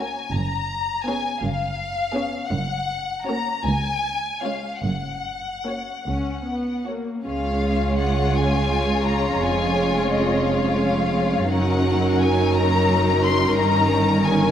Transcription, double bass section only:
Already playing: C#2
0.34 F#1
1.42 F#1
2.51 F#1
3.65 C#2
4.84 F#1
6.06 C#2
7.26 C#2
9.40 F1
11.49 F#1
13.57 G1

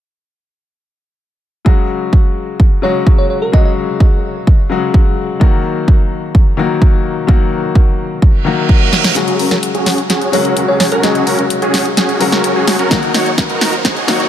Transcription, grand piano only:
1.65 C#3 F#3 G#3 F#4
2.82 C#3 F#3 G#3 F#4
3.52 C#3 F#3 G#3 F#4
4.69 C#3 F#3 G#3 F#4
5.40 D#3 F#3 A#3 F#4
6.57 D#3 F#3 A#3 F#4
7.27 D#3 F#3 A#3 F#4
8.45 D#3 F#3 A#3 F#4
9.15 C#3 F#3 G#3 F#4
10.32 C#3 F#3 G#3 F#4
11.02 C#3 F#3 G#3 F#4
12.19 C#3 F#3 G#3 F#4
12.90 D#3 F#3 A#3 F#4
14.07 D#3 F#3 A#3 F#4

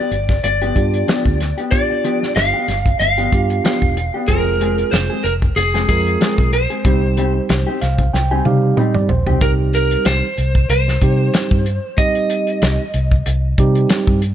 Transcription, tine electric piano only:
0.75 B3 D4 F4 G4
1.72 B3 D4 F4 G4
3.32 B3 D4 F4 G4
4.28 G#3 C4 F4 G#4
5.89 G#3 C4 F4 A#4
6.85 G3 C4 D#4 G4
7.81 F5
8.14 G5
8.31 G#5
8.45 G3 C4 D#4 G4 F5
8.78 D#5
8.95 D5
9.09 C5
9.40 G3 C4 D#4 G4
11.01 G3 C4 D#4 G4
11.97 G3 C4 D#4 G4
13.58 G3 C4 D#4 G4

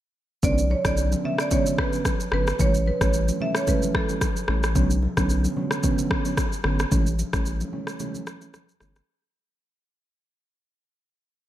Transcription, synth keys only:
0.43 D3 F#3 B3 C#4
0.85 D3 F#3 B3 C#4
1.24 D3 F#3 B3 C#4
1.51 D3 F#3 B3 C#4
1.93 D3 F#3 B3 C#4
2.32 D3 F#3 B3 C#4
2.59 E3 G3 A3 C#4
3.01 E3 G3 A3 C#4
3.40 E3 G3 A3 C#4
3.67 E3 G3 A3 C#4
4.09 E3 G3 A3 C#4
4.48 E3 G3 A3 C#4
4.75 D3 F#3 B3 C#4
5.17 D3 F#3 B3 C#4
5.56 D3 F#3 B3 C#4
5.83 D3 F#3 B3 C#4
6.25 D3 F#3 B3 C#4
6.64 D3 F#3 B3 C#4
6.91 E3 G3 A3 C#4
7.33 E3 G3 A3 C#4
7.72 E3 G3 A3 C#4
8.00 E3 G3 A3 C#4
8.42 E3 G3 A3 C#4
8.81 E3 G3 A3 C#4

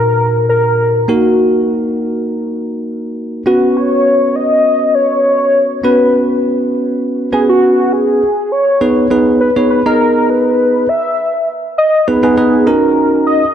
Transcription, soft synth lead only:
Already playing: A#4
0.49 A#4
1.09 F#4
3.47 F#4
3.77 C#5
4.35 D#5
4.95 C#5
5.84 B4
7.33 G#4
7.49 F#4
7.93 G#4
8.52 C#5
9.41 B4
9.70 B4
9.86 A#4
10.30 B4
10.89 E5
11.78 D#5
12.08 B4
12.24 G#4
12.67 A#4
13.27 D#5

